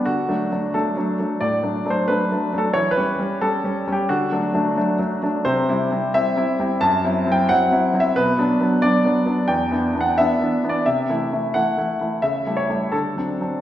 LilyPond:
<<
  \new Staff \with { instrumentName = "Grand piano" } { \time 4/4 \key d \mixolydian \tempo 4 = 89 fis'4 a'4 d''8. c''16 b'8. a'16 | cis''16 b'8. a'8. g'16 fis'2 | c''4 e''4 a''8. g''16 fis''8. e''16 | b'4 d''4 g''8. fis''16 e''8. d''16 |
e''4 fis''4 e''8 cis''8 a'4 | }
  \new Staff \with { instrumentName = "Grand piano" } { \time 4/4 \key d \mixolydian \tuplet 3/2 { d8 <fis a d'>8 <fis a d'>8 <fis a d'>8 <fis a d'>8 <fis a d'>8 a,8 <fis a d'>8 <fis a d'>8 <fis a d'>8 <fis a d'>8 <fis a d'>8 } | \tuplet 3/2 { e8 <g cis'>8 <g cis'>8 <g cis'>8 <g cis'>8 <g cis'>8 d8 <fis a d'>8 <fis a d'>8 <fis a d'>8 <fis a d'>8 <fis a d'>8 } | \tuplet 3/2 { c8 <g c' e'>8 <g c' e'>8 <g c' e'>8 <g c' e'>8 <g c' e'>8 fis,8 <fis c' e'>8 <fis c' e'>8 <fis c' e'>8 <fis c' e'>8 <fis c' e'>8 } | \tuplet 3/2 { b,8 <fis b d'>8 <fis b d'>8 <fis b d'>8 <fis b d'>8 <fis b d'>8 e,8 <e b d'>8 <e b d'>8 <e b d'>8 <e b d'>8 <e b d'>8 } |
\tuplet 3/2 { c8 <e a e'>8 <e a e'>8 <e a e'>8 <e a e'>8 <e a e'>8 cis8 <g a e'>8 <g a e'>8 d8 <fis c' d'>8 <fis c' d'>8 } | }
>>